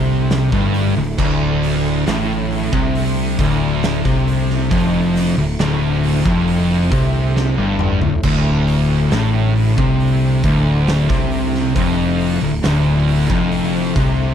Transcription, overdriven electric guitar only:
0.00 0.51 C3 loud
0.53 0.95 G2 loud
0.97 1.18 D2 medium
1.19 2.06 D2 loud
2.07 2.72 A2 loud
2.73 3.38 C3 loud
3.40 4.04 D2 loud
4.06 4.70 C3 loud
4.71 5.36 F2 loud
5.38 5.59 D2 medium
5.60 6.24 D2 loud
6.25 6.90 F2 loud
6.92 7.57 C3 loud
7.57 8.00 G2 loud
8.02 8.23 D2 medium
8.24 9.11 D2 loud
9.12 9.77 A2 loud
9.78 10.43 C3 loud
10.44 11.09 D2 loud
11.10 11.75 C3 loud
11.76 12.41 F2 loud
12.42 12.62 D2 medium
12.63 13.29 D2 loud
13.29 13.95 F2 loud
13.96 14.34 C3 loud

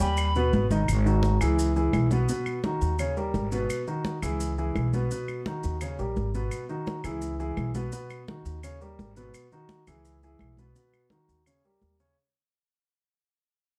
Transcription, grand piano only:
0.00 0.29 G3 medium
0.00 0.29 G4 medium
0.00 0.29 G5 medium
0.36 0.64 B2 medium
0.36 0.65 B3 medium
0.36 0.65 B4 medium
0.71 0.85 D#3 medium
0.71 0.85 D#4 medium
0.71 0.85 D#5 medium
1.06 1.34 D#3 medium
1.06 1.35 D#4 medium
1.06 1.35 F#4 medium
1.41 1.70 E3 medium
1.41 1.70 E4 medium
1.41 1.70 G#4 medium
1.76 2.05 E3 medium
1.76 2.05 E4 medium
1.76 2.05 G#4 medium
2.12 2.26 B2 medium
2.12 2.26 B3 medium
2.12 2.26 B4 medium
2.29 2.58 B2 medium
2.29 2.58 B3 medium
2.29 2.58 B4 medium
2.65 2.93 D#3 medium
2.65 2.93 D#4 medium
2.65 2.94 F#4 medium
3.00 3.14 C#3 medium
3.00 3.14 C#4 medium
3.00 3.14 C#5 medium
3.17 3.46 G3 medium
3.17 3.46 G4 medium
3.17 3.46 A#4 medium
3.52 3.81 B2 medium
3.52 3.81 B3 medium
3.52 3.81 B4 medium
3.88 4.16 D#3 medium
3.88 4.16 D#4 medium
3.88 4.17 F#4 medium
4.22 4.51 E3 medium
4.22 4.51 E4 medium
4.22 4.52 G#4 medium
4.58 4.87 E3 medium
4.58 4.87 E4 medium
4.58 4.87 G#4 medium
4.94 5.08 B2 medium
4.94 5.08 B3 medium
4.94 5.08 B4 medium
5.12 5.40 B2 medium
5.12 5.40 B3 medium
5.12 5.40 B4 medium
5.47 5.75 D#3 medium
5.47 5.75 D#4 medium
5.47 5.76 F#4 medium
5.82 5.96 C#3 medium
5.82 5.96 C#4 medium
5.82 5.96 C#5 medium
5.99 6.28 G3 medium
5.99 6.28 G4 medium
5.99 6.28 A#4 medium
6.35 6.63 B2 medium
6.35 6.63 B3 medium
6.35 6.64 B4 medium
6.69 6.98 D#3 medium
6.69 6.98 D#4 medium
6.69 6.99 F#4 medium
7.04 7.33 E3 medium
7.04 7.34 E4 medium
7.04 7.34 G#4 medium
7.40 7.69 E3 medium
7.40 7.69 E4 medium
7.40 7.69 G#4 medium
7.75 7.89 B2 medium
7.75 7.89 B3 medium
7.75 7.90 B4 medium
7.92 8.21 B2 medium
7.92 8.21 B3 medium
7.92 8.22 B4 medium
8.28 8.57 D#3 medium
8.28 8.57 D#4 medium
8.28 8.57 F#4 medium
8.64 8.78 C#3 medium
8.64 8.78 C#4 medium
8.64 8.78 C#5 medium
8.81 9.10 G3 medium
8.81 9.10 G4 medium
8.81 9.10 A#4 medium
9.17 9.46 B2 medium
9.17 9.46 B3 medium
9.17 9.46 B4 medium
9.52 9.81 D#3 medium
9.52 9.81 D#4 medium
9.52 9.82 F#4 medium
9.88 10.17 E3 medium
9.88 10.17 E4 medium
9.88 10.17 G#4 medium
10.23 10.52 E3 medium
10.23 10.52 E4 medium
10.23 10.52 G#4 medium
10.58 10.73 B2 medium
10.58 10.73 B3 medium
10.58 10.73 B4 medium
10.76 11.05 B2 medium
10.76 11.05 B3 medium
10.76 11.05 B4 medium
11.11 11.40 D#3 medium
11.11 11.41 D#4 medium
11.11 11.41 F#4 medium
11.46 11.61 C#3 medium
11.46 11.61 C#4 medium
11.46 11.62 C#5 medium
11.65 11.94 G3 medium
11.65 11.94 G4 medium
11.65 11.94 A#4 medium
12.00 12.14 C#3 medium
12.00 12.15 C#4 medium
12.00 12.15 C#5 medium

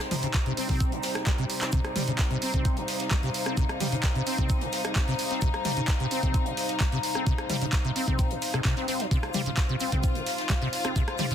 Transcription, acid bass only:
0.11 0.15 F3 loud
0.23 0.27 C#3 loud
0.46 0.52 C3 loud
0.57 0.67 C4 medium
0.69 0.94 C4 medium
0.92 0.98 C3 medium
1.26 1.30 G3 loud
1.38 1.45 C3 loud
1.61 1.71 C4 medium
1.73 1.79 C3 loud
1.96 2.02 G3 loud
2.08 2.11 C#3 loud
2.31 2.37 C3 loud
2.42 2.52 C4 medium
2.54 2.78 C4 medium
2.77 2.83 C3 medium
3.11 3.15 G3 loud
3.23 3.29 C3 loud
3.46 3.55 C4 medium
3.57 3.64 C3 loud
3.80 3.87 G3 loud
3.92 3.96 C#3 loud
4.15 4.22 C3 loud
4.27 4.36 C4 medium
4.38 4.63 C4 medium
4.61 4.68 C3 medium
4.96 5.00 G3 loud
5.08 5.14 C3 loud
5.31 5.40 C4 medium
5.42 5.49 C3 loud
5.65 5.72 G3 loud
5.77 5.81 C#3 loud
6.00 6.06 C3 loud
6.11 6.21 C4 medium
6.23 6.48 C4 medium
6.46 6.52 C3 medium
6.80 6.84 G3 loud
6.92 6.98 C3 loud
7.15 7.25 C4 medium
7.26 7.33 C3 loud
7.49 7.56 G3 loud
7.61 7.65 C#3 loud
7.84 7.91 C3 loud
7.96 8.06 C4 medium
8.07 8.32 C4 medium
8.31 8.37 C3 medium
8.54 8.60 C3 medium
8.65 8.75 C3 loud
8.77 8.86 C4 medium
8.88 9.01 C4 medium
9.00 9.06 F3 loud
9.11 9.18 C3 loud
9.34 9.41 G3 loud
9.46 9.50 C#3 loud
9.69 9.75 C3 loud
9.81 9.90 C4 medium
9.92 10.17 C4 medium
10.15 10.22 C3 medium
10.50 10.54 G3 loud
10.62 10.68 C3 loud
10.85 10.94 C4 medium
10.96 11.02 C3 loud
11.19 11.25 G3 loud
11.31 11.35 C#3 loud

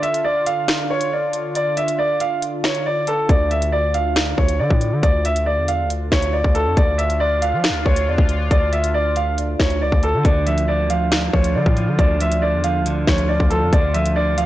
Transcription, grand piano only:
0.03 0.23 E5 medium
0.24 0.45 D5 loud
0.46 0.87 F5 medium
0.90 1.11 C#5 medium
1.13 1.53 D5 medium
1.56 1.76 D5 medium
1.77 1.97 E5 medium
1.99 2.19 D5 medium
2.21 2.41 F5 medium
2.64 2.84 C#5 medium
2.86 3.06 D5 medium
3.08 3.28 A4 medium
3.30 3.50 D5 medium
3.51 3.71 E5 medium
3.72 3.93 D5 medium
3.94 4.35 F5 medium
4.37 4.58 C#5 medium
4.60 5.00 D5 medium
5.03 5.23 D5 medium
5.25 5.46 E5 medium
5.46 5.67 D5 medium
5.68 5.89 F5 medium
6.12 6.32 C#5 medium
6.33 6.54 D5 medium
6.55 6.75 A4 loud
6.77 6.98 D5 medium
6.98 7.19 E5 medium
7.20 7.41 D5 loud
7.42 7.83 F5 medium
7.86 8.06 C#5 medium
8.08 8.49 D5 medium
8.51 8.72 D5 medium
8.73 8.93 E5 medium
8.94 9.15 D5 medium
9.16 9.37 F5 medium
9.59 9.80 C#5 medium
9.82 10.02 D5 medium
10.03 10.24 A4 medium
10.25 10.46 D5 medium
10.47 10.67 E5 medium
10.68 10.89 D5 medium
10.90 11.31 F5 medium
11.33 11.54 C#5 medium
11.55 11.96 D5 medium
11.98 12.19 D5 medium
12.21 12.41 E5 medium
12.42 12.63 D5 medium
12.64 12.84 F5 medium
13.08 13.28 C#5 medium
13.29 13.49 D5 medium
13.50 13.71 A4 medium
13.73 13.93 D5 medium
13.94 14.15 E5 medium
14.16 14.36 D5 loud
14.38 14.46 F5 medium

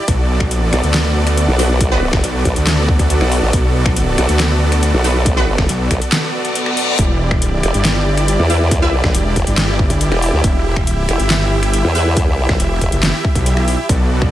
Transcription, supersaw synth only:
0.00 6.95 D5 medium
0.08 6.95 B3 medium
0.08 6.95 F#4 medium
0.08 6.95 A4 medium
6.99 13.85 E4 medium
6.99 13.85 G4 medium
6.99 10.41 D5 medium
10.44 13.86 E5 medium
13.89 14.31 B3 medium
13.89 14.31 F#4 medium
13.89 14.31 A4 medium
13.89 14.31 D5 medium

